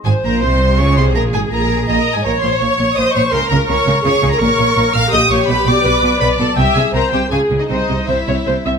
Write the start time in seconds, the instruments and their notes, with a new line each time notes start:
0.05 double bass section G#1, cello section G#2, violin section G#4 G#5, viola section C5
0.24 double bass section A#1, cello section A#2, violin section A#4 A#5
0.41 double bass section C2, cello section C3, violin section C5 C6
0.78 double bass section C#2, cello section C#3, viola section G#4, violin section C#5 C#6
0.97 double bass section C2, cello section C3, violin section C5 C6
1.15 double bass section A#1, cello section A#2, violin section A#4 A#5
1.33 double bass section G#1, cello section G#2, violin section G#4 G#5
1.50 double bass section A#1, cello section A#2, violin section A#4 A#5
1.87 double bass section A#1, cello section A#2, violin section A#4 A#5, viola section D#5
2.15 cello section G#2, violin section G#4 G#5
2.23 double bass section A#1, cello section A#2, violin section A#4 A#5, viola section C#5
2.41 double bass section A#1, cello section A#2, violin section C5 C6
2.60 double bass section A#1, cello section A#2, violin section C#5 C#6
2.79 double bass section A#1, cello section A#2
2.95 double bass section A#1, cello section A#2, viola section C5, violin section D#5 D#6
3.13 double bass section A#1, cello section A#2, violin section C#5 C#6
3.31 double bass section C#2, cello section C#3, viola section A#4, violin section C5 C6
3.49 double bass section C#2, cello section C#3, violin section A#4 A#5
3.67 double bass section C#2, cello section C#3, violin section C#5 C#6
3.86 double bass section C#2, cello section C#3
4.04 double bass section C#2, cello section C#3, viola section G#4, violin section C#5 C#6
4.22 double bass section C#2, cello section C#3
4.31 violin section A#4 A#5
4.40 double bass section A#1, cello section A#2, viola section A#4, violin section C#5 C#6
4.58 double bass section A#1, cello section A#2
4.75 double bass section A#1, cello section A#2
4.93 double bass section A#1, cello section A#2, violin section F5 F6
5.11 double bass section A#1, cello section A#2, viola section G4, violin section D#5 D#6
5.29 double bass section A#1, cello section A#2, violin section C#5 C#6
5.48 double bass section B1, cello section B2, violin section B4 B5
5.66 double bass section B1, cello section B2, violin section D5 D6
5.84 double bass section B1, cello section B2, viola section B4
6.02 double bass section B1, cello section B2
6.20 double bass section B1, cello section B2, violin section B4 B5, viola section D5
6.37 double bass section B1, cello section B2, violin section A4 A5
6.56 double bass section C2, cello section C3, violin section G4 G5, viola section E5
6.74 double bass section C2, cello section C3, violin section G#4 G#5
6.94 double bass section C2, cello section C3, violin section A#4 A#5, viola section C5
7.12 double bass section C2, cello section C3, violin section G4 G5
7.30 double bass section C#2, cello section C#3, viola section G#4, violin section G#4 G#5
7.50 double bass section C#2, cello section C#3
7.60 violin section D#4 D#5
7.69 double bass section C2, cello section C3, violin section D#4 D#5, viola section C5
7.89 double bass section C2, cello section C3
8.07 double bass section C2, cello section C3, violin section E4 E5, viola section C5
8.27 double bass section C2, cello section C3, viola section C#5
8.46 double bass section C2, cello section C3, viola section C5
8.65 double bass section C2, cello section C3, viola section E5